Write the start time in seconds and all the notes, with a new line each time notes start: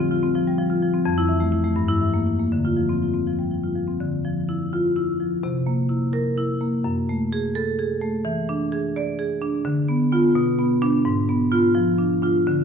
Already playing: D3
0.00 C4
0.11 F4
0.23 C4
0.35 F3
0.48 G3
0.58 F3
0.70 F4
0.82 F3
0.94 C4
1.05 F2
1.18 E4
1.29 E3
1.40 A3
1.52 E4
1.64 A3
1.76 G2
1.88 E4
2.01 E3
2.14 A#3
2.27 E4
2.40 A#3
2.52 D3
2.65 F4
2.77 F3
2.89 C4
3.02 F4
3.14 C4
3.27 F3
3.39 G3
3.51 F3
3.63 F4
3.75 F3
3.88 C4
4.00 D3
4.25 F3
4.49 E4
4.73 F4
4.96 E4
5.20 F3
5.43 C3
5.67 A#3
5.89 E4
6.13 A#4
6.37 E4
6.61 A#3
6.84 F#2
7.09 A3
7.33 G#4
7.55 A4
7.79 G#4
8.01 A3
8.25 E3
8.49 D4
8.72 G#4
8.96 D5
9.19 G#4
9.42 D4
9.65 D3
9.88 B3
10.12 B3 F4
10.35 B2
10.59 B3
10.82 B3 D4
11.05 G#2
11.29 B3
11.52 B3 F4
11.75 F3
11.99 D4
12.22 D4 F4
12.47 D3